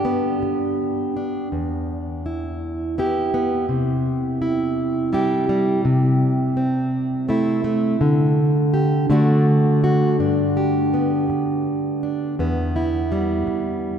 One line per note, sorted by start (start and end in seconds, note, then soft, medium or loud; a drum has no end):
0.00 0.41 G2 medium
0.00 1.15 D4 medium
0.00 1.47 G4 medium
0.05 1.47 B3 medium
0.42 muted steel-string acoustic guitar stroke medium
1.17 1.48 D4 medium
1.52 3.69 E2 medium
2.26 2.98 E4 medium
2.98 3.33 B3 medium
2.98 4.41 E4 medium
2.98 3.66 G4 medium
3.34 3.65 B3 medium
3.69 5.80 C3 medium
4.42 5.12 E4 medium
5.13 5.48 G3 medium
5.13 5.80 E4 medium
5.13 5.81 G4 medium
5.49 5.85 G3 medium
5.85 7.96 C3 medium
6.57 7.28 C4 medium
7.29 7.63 A3 medium
7.29 7.96 C4 medium
7.29 8.01 E4 medium
7.64 7.96 A3 medium
8.01 9.08 D3 medium
8.74 9.06 G4 medium
9.10 12.39 D3 medium
9.10 10.16 A3 medium
9.10 10.16 D4 medium
9.10 9.83 F#4 medium
9.84 10.16 F#4 medium
10.19 11.29 G2 medium
10.19 12.02 D4 medium
10.57 12.34 G4 medium
10.94 12.35 B3 soft
11.30 muted steel-string acoustic guitar stroke medium
12.03 12.35 D4 medium
12.39 13.46 E2 medium
12.39 13.99 B3 medium
12.76 13.99 E4 medium
13.12 13.99 G3 medium
13.47 muted steel-string acoustic guitar stroke medium